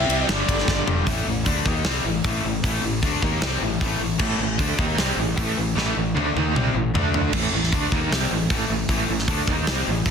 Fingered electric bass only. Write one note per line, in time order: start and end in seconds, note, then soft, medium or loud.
0.08 0.23 C2 medium
0.28 0.43 G1 loud
0.48 0.62 G1 medium
0.68 0.82 G1 loud
0.88 1.02 E1 medium
1.06 1.25 A1 loud
1.27 1.45 A1 medium
1.46 1.65 D2 loud
1.66 1.84 D#2 loud
1.85 2.03 C2 medium
2.04 2.23 A1 medium
2.24 2.43 A1 loud
2.44 2.62 A1 medium
2.64 2.82 A1 loud
2.84 3.02 A1 medium
3.02 3.21 D2 loud
3.23 3.41 D#2 loud
3.42 3.60 C2 medium
3.61 3.79 A1 medium
3.81 3.99 A1 loud
4.00 4.18 A1 medium
4.19 4.38 A1 loud
4.39 4.57 A1 medium
4.59 4.77 D2 loud
4.78 4.96 D#2 medium
4.97 5.16 C2 loud
5.17 5.35 A1 medium
5.37 5.55 A1 loud
5.57 5.75 A1 medium
5.77 5.95 A1 loud
5.97 6.14 A1 medium
6.14 6.33 D2 medium
6.35 6.53 D#2 medium
6.54 6.73 C2 medium
6.74 6.92 A1 medium
6.94 7.30 D2 loud
7.33 7.51 A1 loud
7.53 7.71 A1 medium
7.73 7.90 D2 loud
7.92 8.10 D#2 loud
8.10 8.29 C2 medium
8.31 8.48 A1 medium
8.50 8.68 A1 loud
8.70 8.87 A1 medium
8.88 9.07 A1 loud
9.09 9.27 A1 medium
9.28 9.46 D2 loud
9.48 9.66 D#2 loud
9.67 9.85 C2 loud
9.87 10.05 A1 medium
10.06 10.11 A1 loud